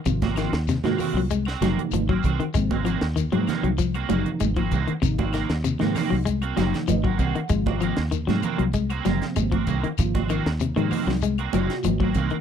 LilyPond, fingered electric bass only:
\new Staff \with { instrumentName = "Fingered electric bass" } { \clef bass \time 4/4 \key aes \mixolydian \tempo 4 = 97 aes,,8. ees,8 aes,16 r16 c,8. ges,,16 r16 aes,,8 c,16 r16 | aes,,8. ees,8 aes,16 r16 c,8. ges,,16 r16 aes,,8 c,16 r16 | aes,,8. ees,8 aes,16 r16 c,8. ges,,16 r16 aes,,8 c,16 r16 | aes,,8. ees,8 aes,16 r16 c,8. ges,,16 r16 aes,,8 c,16 r16 |
aes,,8. ees,8 aes,16 r16 c,8. ges,,16 r16 aes,,8 c,16 r16 | }